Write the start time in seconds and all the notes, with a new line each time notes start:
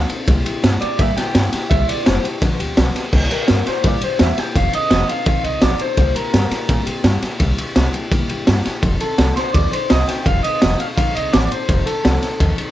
Already playing: C4 D#4 F5
0.09 C4 D#4 A4, ride
0.27 C2 C3 G3 A#3 E4 G4, kick, ride
0.44 A#3 E4 G4, muted upright bass stroke, ride
0.62 G2 G3 A#3 E4 G4, snare, ride
0.80 A#3 E4 G4 D5, muted upright bass stroke, ride
0.99 A#2 C3 G3 A#3 E4 G4 E5, kick, ride
1.17 A#3 E4 G4 G5, muted upright bass stroke, snare, ride
1.34 G2 G3 A#3 E4 G4, snare, ride
1.53 A#3 E4 G4, muted upright bass stroke, snare, ride
1.70 C2 C3 G3 A#3 E4 G4 E5, kick, ride
1.87 A#3 E4 G4 D5, ride
2.06 F#1 G3 A#3 E4 G4 C5, snare, ride
2.23 A#3 E4 G4, muted upright bass stroke, ride
2.40 G1 G2 D3 F3 B3 F4 G4, kick, snare, ride
2.59 D2 F3 B3 F4 G4, ride
2.77 B1 F3 B3 F4 G4, snare, ride
2.96 F3 B3 F4 G4, muted upright bass stroke, snare, ride
3.13 C2 C3 G3 A#3 E4 G4, kick, crash
3.29 A#3 E4 G4 A#4, ride
3.47 G2 G3 A#3 E4 G4, snare, ride
3.65 E4 G4 C5, muted upright bass stroke, snare, ride
3.84 A#2 C3 G3 A#3 E4 G4 D5, kick, ride
4.01 A#3 E4 G4 C5, muted upright bass stroke, ride
4.19 E2 G3 A#3 E4 G4 E5, snare, ride
4.37 A#3 E4 G4 G5, snare, ride
4.56 F1 F3 C4 D#4 A4 F5, kick, ride
4.73 C4 D#4 A4 D#5, ride
4.90 F1 F3 C4 D#4 A4, snare, ride
5.08 C4 D#4 A4 F5, ride
5.26 A1 F3 C4 D#4 A4 F5, kick, ride
5.43 C2 C4 D#4 A4 D#5, ride
5.62 A#1 F3 C4 D#4 A4 D5, snare, ride
5.79 C4 D#4 A4 C5, ride
5.97 C2 C3 G3 A#3 E4 G4, kick, ride
6.16 E4 G4 A#4, ride
6.34 G2 G3 A#3 E4 G4, snare, ride
6.51 A#3 E4 G4, muted upright bass stroke, snare, ride
6.69 A#2 C3 G3 A#3 E4 G4, kick, ride
6.86 A#3 E4 G4, muted upright bass stroke, ride
7.04 G2 G3 A#3 E4 G4, snare, ride
7.22 A#3 E4 G4, muted upright bass stroke, snare, ride
7.40 C2 C3 G3 A#3 E4 G4, kick, ride
7.58 A#3 E4 G4, ride
7.76 C2 G3 A#3 E4 G4, snare, ride
7.93 A#3 E4 G4, ride
8.12 C3 G3 A#3 E4 G4, kick, ride
8.29 G2 A#3 E4 G4, ride
8.47 G2 G3 A#3 E4 G4, snare, ride
8.65 A#3 E4 G4, muted upright bass stroke, snare, ride
8.83 F1 F3 C4 D#4 A4, kick, ride
9.00 C4 D#4 A4, ride
9.18 C2 F3 C4 D#4 A4, snare, ride
9.36 C4 D#4 A4 C5, muted upright bass stroke, snare, ride
9.53 D#2 F3 C4 D#4 A4 D5, kick, ride
9.71 C4 D#4 A4 C5, muted upright bass stroke, ride
9.90 C2 F3 C4 D#4 A4 D#5, snare, ride
10.07 C4 D#4 A4 G5, muted upright bass stroke, snare, ride
10.26 F1 F3 C4 D#4 A4 F5, kick, ride
10.43 C4 D#4 A4 D#5, ride
10.61 F1 F3 C4 D#4 A4, snare, ride
10.80 C4 D#4 A4 F5, ride
10.97 F3 C4 D#4 A4 F5, kick, ride
11.15 C2 C4 D#4 A4 D#5, ride
11.32 A1 F3 C4 D#4 A4 D5, snare, ride
11.45 D5
11.51 C4 D#4 A4 C5, ride
11.69 F1 F3 C4 D#4 A4, kick, ride
11.85 C4 D#4 A4, ride
12.03 C2 F3 C4 D#4 A4, snare, ride
12.22 C4 D#4 A4, muted upright bass stroke, snare, ride
12.40 D#2 F3 C4 D#4 A4, kick, ride
12.58 C4 D#4 A4, muted upright bass stroke, ride